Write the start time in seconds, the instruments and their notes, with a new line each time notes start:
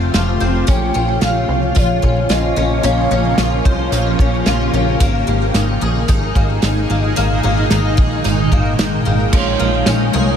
Already playing: analog synth bass F1, ambient pad C#3 F3 A3 F4 G4, twelve-string acoustic guitar A3 C4 F4 C5
0.14 analog synth bass F1, twelve-string acoustic guitar F4, snare, closed hi-hat
0.40 analog synth bass F1, twelve-string acoustic guitar C4
0.67 analog synth bass A#1, ambient pad F3 A#3 C#4, twelve-string acoustic guitar C#4, soft synth lead G5, kick, closed hi-hat
0.94 analog synth bass A#1, twelve-string acoustic guitar C#4
1.21 analog synth bass A#1, twelve-string acoustic guitar F4, soft synth lead F5, snare, closed hi-hat
1.49 analog synth bass C2
1.75 analog synth bass A#1, twelve-string acoustic guitar F4, soft synth lead C#5, kick, closed hi-hat
2.02 analog synth bass A#1, twelve-string acoustic guitar C#4, kick
2.29 analog synth bass A#1, twelve-string acoustic guitar F4, soft synth lead D#5, snare, closed hi-hat
2.56 analog synth bass A#1, twelve-string acoustic guitar C#4
2.83 analog synth bass A#1, twelve-string acoustic guitar C#4, ambient pad G4, soft synth lead F5, closed hi-hat
3.11 analog synth bass A#1, twelve-string acoustic guitar C#4
3.38 analog synth bass A#1, twelve-string acoustic guitar F4, snare, closed hi-hat
3.65 analog synth bass C2, twelve-string acoustic guitar C5, kick
3.92 analog synth bass A#1, twelve-string acoustic guitar F4, closed hi-hat
4.19 analog synth bass A#1, twelve-string acoustic guitar C#4, kick
4.46 analog synth bass A#1, twelve-string acoustic guitar F4, snare, closed hi-hat
4.73 analog synth bass A#1, twelve-string acoustic guitar C#4
5.00 analog synth bass G#1, ambient pad A#2 D#3 G#3 D#4 G#4, twelve-string acoustic guitar A#3, kick, closed hi-hat
5.27 analog synth bass G#1, twelve-string acoustic guitar A#3
5.54 analog synth bass G#1, twelve-string acoustic guitar D#4, snare, closed hi-hat
5.81 analog synth bass A#1, twelve-string acoustic guitar G#4
6.08 analog synth bass G#1, twelve-string acoustic guitar D#4, kick, closed hi-hat
6.35 analog synth bass G#1, twelve-string acoustic guitar A#3, kick
6.62 analog synth bass G#1, twelve-string acoustic guitar D#4, snare, closed hi-hat
6.90 analog synth bass G#1, twelve-string acoustic guitar A#3
7.16 analog synth bass G#1, twelve-string acoustic guitar A#3, ambient pad G5, closed hi-hat
7.43 analog synth bass G#1, twelve-string acoustic guitar A#3
7.70 analog synth bass G#1, twelve-string acoustic guitar D#4, snare, closed hi-hat
7.97 analog synth bass A#1, twelve-string acoustic guitar G#4, kick
8.24 analog synth bass G#1, twelve-string acoustic guitar D#4, closed hi-hat
8.52 analog synth bass G#1, twelve-string acoustic guitar A#3, kick
8.78 analog synth bass G#1, twelve-string acoustic guitar D#4, snare, closed hi-hat
9.05 analog synth bass G#1, twelve-string acoustic guitar A#3
9.32 analog synth bass A#1, clean electric guitar A#2 F3 G#3, ambient pad C#3 G#3 A#3 F4 A#4, twelve-string acoustic guitar F3, soft synth lead C#5, kick, crash
9.36 clean electric guitar C#4 F4
9.59 analog synth bass A#1, twelve-string acoustic guitar A#3
9.86 analog synth bass A#1, twelve-string acoustic guitar C#4, snare, closed hi-hat, tambourine
10.13 analog synth bass C2, twelve-string acoustic guitar G#4